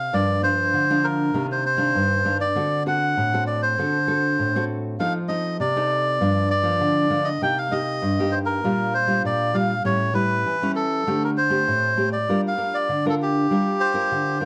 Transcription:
Already playing: melodica F5
0.13 nylon-string guitar G2 F3 A#3 D4, melodica D5
0.42 nylon-string guitar F3 A#3 D4, melodica C5
0.74 nylon-string guitar D3
0.90 nylon-string guitar F3 A#3 D4
1.04 melodica A#4
1.34 nylon-string guitar C3 D#3 A#3 D4
1.52 melodica C5
1.66 melodica C5
1.77 nylon-string guitar D#3 A#3 D4
1.95 nylon-string guitar G2
2.25 nylon-string guitar D#3 A#3 D4
2.41 melodica D5
2.55 nylon-string guitar D3 C4 F#4 A4
2.86 nylon-string guitar C4 F#4 A4, melodica F#5
3.17 nylon-string guitar A2
3.33 nylon-string guitar C4 F#4 A4
3.47 melodica D5
3.62 melodica C5
3.78 nylon-string guitar D3 C4 F#4 A4
4.07 nylon-string guitar C4 F#4 A4
4.39 nylon-string guitar A2
4.56 nylon-string guitar C4 F#4 A4
5.00 nylon-string guitar F3 C4 D#4 A4, melodica F5
5.28 nylon-string guitar C4 D#4 A4, melodica D#5
5.60 nylon-string guitar C3, melodica D5
5.76 nylon-string guitar C4 D#4 A4
6.21 nylon-string guitar G2 F3 A#3 D4
6.51 melodica D5
6.63 nylon-string guitar F3 A#3 D4
6.80 nylon-string guitar D3
7.10 nylon-string guitar F3 A#3 D4
7.25 melodica D#5
7.41 nylon-string guitar C3 A#3 D#4 G4, melodica G5
7.58 melodica F5
7.71 nylon-string guitar A#3 D#4 G4, melodica D#5
8.02 nylon-string guitar G2
8.19 nylon-string guitar A#3 D#4 G4
8.32 melodica C5
8.45 melodica A#4
8.64 nylon-string guitar A#2 G3 D4 F4
8.94 melodica C5
9.07 nylon-string guitar G3 D4 F4
9.25 nylon-string guitar A#2, melodica D5
9.54 nylon-string guitar G3 D4 F4, melodica F5
9.84 nylon-string guitar A2 G3 C#4 E4, melodica C#5
10.14 nylon-string guitar G3 C#4 E4, melodica B4
10.46 nylon-string guitar E3
10.62 nylon-string guitar G3 C#4 E4
10.76 melodica A4
11.07 nylon-string guitar D3 A3 C4 G4
11.24 melodica A#4
11.37 melodica C5
11.50 nylon-string guitar A3 C4 G4
11.68 nylon-string guitar A2
11.97 nylon-string guitar A3 C4 G4
12.13 melodica D5
12.29 nylon-string guitar G3 D4 F4 A#4
12.48 melodica F5
12.57 nylon-string guitar D4 F4 A#4
12.74 melodica D5
12.89 nylon-string guitar D3
13.06 nylon-string guitar D4 F4 A#4, melodica A4
13.22 melodica G4
13.51 nylon-string guitar G3 D4 F4 A#4
13.80 melodica C5
13.94 nylon-string guitar D4 F4 A#4
14.12 nylon-string guitar D3
14.40 nylon-string guitar D4 F4 A#4

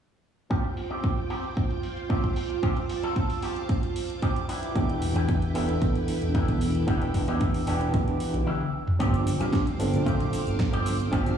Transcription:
0.50 clean electric guitar C4 F4 G4, string machine F4 C5 G5 D6, kick, closed hi-hat
0.64 closed hi-hat
0.77 muted clean electric guitar stroke, open hi-hat
0.90 clean electric guitar C4 F4 G4, closed hi-hat
1.04 kick, closed hi-hat
1.17 closed hi-hat
1.30 clean electric guitar C4 F4 G4, open hi-hat
1.44 closed hi-hat
1.57 muted clean electric guitar stroke, kick, closed hi-hat
1.71 closed hi-hat
1.83 open hi-hat
1.97 closed hi-hat
2.09 clean electric guitar C4 F4 G4, kick, closed hi-hat
2.24 kick, closed hi-hat
2.36 muted clean electric guitar stroke, open hi-hat
2.50 closed hi-hat
2.63 clean electric guitar C4 F4 G4, string machine A5, kick, closed hi-hat
2.77 closed hi-hat
2.89 muted clean electric guitar stroke, open hi-hat
3.03 clean electric guitar C4 F4 A4, closed hi-hat
3.16 kick, closed hi-hat
3.30 open hi-hat
3.42 clean electric guitar C4 F4 G4, open hi-hat
3.56 closed hi-hat
3.69 muted clean electric guitar stroke, kick, closed hi-hat
3.83 closed hi-hat
3.96 open hi-hat
4.10 closed hi-hat
4.22 clean electric guitar C4 F4 G4, kick, closed hi-hat
4.36 closed hi-hat
4.49 clean electric guitar D4 E4 G4, string machine E4 B4 G5, open hi-hat
4.63 closed hi-hat
4.74 analog synth bass E1, tine electric piano E3 B3 D4 G4, kick, closed hi-hat
4.89 closed hi-hat
5.02 muted clean electric guitar stroke, open hi-hat
5.16 analog synth bass E2, clean electric guitar D4 E4 G4, closed hi-hat
5.29 kick, closed hi-hat
5.42 closed hi-hat
5.54 analog synth bass E1, tine electric piano E3 B3 D4 A4, clean electric guitar D4 E4 G4, open hi-hat
5.69 closed hi-hat
5.82 analog synth bass B1, muted clean electric guitar stroke, kick, closed hi-hat
5.95 closed hi-hat
6.08 open hi-hat
6.22 analog synth bass E1, closed hi-hat
6.34 clean electric guitar D4 E4 G4, kick, closed hi-hat
6.48 analog synth bass E1, kick, closed hi-hat
6.61 muted clean electric guitar stroke, open hi-hat
6.75 closed hi-hat
6.87 analog synth bass E1, tine electric piano E3 B3 D4 G4, clean electric guitar D4 E4 G4, kick, closed hi-hat
7.02 closed hi-hat
7.14 muted clean electric guitar stroke, kick, open hi-hat
7.28 analog synth bass E2, clean electric guitar D4 E4 G4, closed hi-hat
7.41 kick, closed hi-hat
7.54 open hi-hat
7.66 analog synth bass E1, tine electric piano E3 B3 D4 G4, clean electric guitar D4 E4 G4, open hi-hat
7.81 closed hi-hat
7.94 analog synth bass B1, muted clean electric guitar stroke, kick, closed hi-hat
8.08 closed hi-hat
8.20 open hi-hat
8.34 analog synth bass B1, closed hi-hat
8.46 clean electric guitar D4 E4 G4, high tom
8.61 high tom
8.73 muted clean electric guitar stroke
8.87 mid tom
8.99 analog synth bass G1, tine electric piano F3 C4 D4 G4, clean electric guitar C4 F4 G4, string machine C5 F5 G5 D6, kick, closed hi-hat, shaker
9.14 closed hi-hat, high conga, shaker
9.27 open hi-hat, shaker
9.40 analog synth bass G2, clean electric guitar C4 F4 G4, closed hi-hat, high conga, low conga, shaker
9.53 kick, snare, closed hi-hat, shaker
9.67 closed hi-hat
9.79 analog synth bass G1, tine electric piano F3 C4 D4 A4, muted clean electric guitar stroke, open hi-hat, high bongo, shaker
9.94 closed hi-hat, high conga, low conga, shaker
10.05 analog synth bass D2, clean electric guitar C4 F4 G4, kick, closed hi-hat, shaker
10.20 closed hi-hat, high conga, low conga
10.33 open hi-hat, shaker
10.47 analog synth bass G1, closed hi-hat, shaker
10.59 kick, snare, closed hi-hat, shaker
10.73 analog synth bass G1, clean electric guitar C4 F4 G4, closed hi-hat
10.86 open hi-hat, shaker
11.00 closed hi-hat, shaker
11.11 analog synth bass G1, tine electric piano F3 C4 D4 G4, clean electric guitar C4 F4 G4, string machine E6, kick, closed hi-hat, shaker
11.26 closed hi-hat, high conga, shaker

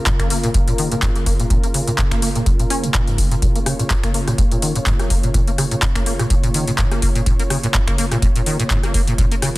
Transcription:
Already playing: analog synth pad C#3 A#3 F4 A#4
0.06 acid bass G#2, kick, clap, closed hi-hat
0.20 acid bass A#3, finger snap, kick, closed hi-hat
0.30 acid bass A#3, open hi-hat
0.44 acid bass A#2, closed hi-hat
0.54 acid bass A#2, kick, closed hi-hat
0.68 acid bass A#2, closed hi-hat
0.78 acid bass D#3, open hi-hat
0.92 acid bass A#2, closed hi-hat
1.02 acid bass G#2, kick, clap, closed hi-hat
1.16 acid bass A#3, closed hi-hat
1.26 acid bass A#3, kick, open hi-hat
1.40 acid bass A#2, closed hi-hat
1.50 acid bass A#2, kick, closed hi-hat
1.63 acid bass A#3, closed hi-hat
1.74 acid bass C#3, open hi-hat
1.87 acid bass A#2, closed hi-hat
1.98 acid bass G#2, kick, clap, closed hi-hat
2.11 acid bass A#3, finger snap, kick, closed hi-hat
2.22 acid bass A#3, open hi-hat
2.35 acid bass A#2, closed hi-hat
2.46 acid bass A#2, kick, closed hi-hat
2.59 acid bass A#2, closed hi-hat
2.70 acid bass C#4, open hi-hat
2.83 acid bass G#2, closed hi-hat
2.94 acid bass A#2, kick, clap, closed hi-hat
3.07 acid bass G#2, closed hi-hat
3.18 acid bass A#3, kick, open hi-hat
3.31 acid bass A#2, closed hi-hat
3.42 acid bass A#2, analog synth pad C#5, kick, closed hi-hat
3.55 acid bass A#3, closed hi-hat
3.66 acid bass C#3, cross-stick, open hi-hat
3.79 acid bass A#2, closed hi-hat
3.90 acid bass G#2, kick, clap, closed hi-hat
4.03 acid bass A#3, finger snap, kick, closed hi-hat
4.14 acid bass A#3, open hi-hat
4.27 acid bass A#2, cross-stick, closed hi-hat
4.38 acid bass A#2, kick, closed hi-hat
4.52 acid bass A#2, closed hi-hat
4.62 acid bass D#3, open hi-hat
4.75 acid bass A#2, closed hi-hat
4.86 acid bass G#2, kick, clap, closed hi-hat
4.99 acid bass A#3, cross-stick, closed hi-hat
5.10 acid bass A#3, kick, open hi-hat
5.23 acid bass A#2, closed hi-hat
5.34 acid bass A#2, kick, closed hi-hat
5.47 acid bass A#3, closed hi-hat
5.58 acid bass C#3, cross-stick, open hi-hat
5.71 acid bass A#2, closed hi-hat
5.82 acid bass G#2, kick, clap, closed hi-hat
5.95 acid bass A#3, finger snap, kick, closed hi-hat
6.06 acid bass A#3, open hi-hat
6.19 acid bass A#2, cross-stick, closed hi-hat
6.30 acid bass A#2, kick, closed hi-hat
6.43 acid bass A#2, closed hi-hat
6.54 acid bass D#3, open hi-hat
6.67 acid bass A#2, closed hi-hat
6.78 acid bass G#2, kick, clap, closed hi-hat
6.91 acid bass A#3, cross-stick, closed hi-hat
7.02 acid bass A#3, kick, open hi-hat
7.15 acid bass A#2, closed hi-hat
7.26 acid bass A#2, kick, closed hi-hat
7.39 acid bass A#3, closed hi-hat
7.50 acid bass C#3, cross-stick, open hi-hat
7.63 acid bass A#2, closed hi-hat
7.74 acid bass G#2, kick, clap, closed hi-hat
7.87 acid bass A#3, finger snap, kick, closed hi-hat
7.98 acid bass A#3, open hi-hat
8.12 acid bass A#2, cross-stick, closed hi-hat
8.22 acid bass A#2, kick, closed hi-hat
8.36 acid bass A#2, closed hi-hat
8.46 acid bass D#3, open hi-hat
8.60 acid bass A#2, closed hi-hat
8.70 acid bass G#2, kick, clap, closed hi-hat
8.83 acid bass A#3, cross-stick, closed hi-hat
8.94 acid bass A#3, kick, open hi-hat
9.07 acid bass A#2, closed hi-hat
9.18 acid bass A#2, kick, closed hi-hat
9.31 acid bass A#3, closed hi-hat
9.42 acid bass C#3, cross-stick, open hi-hat

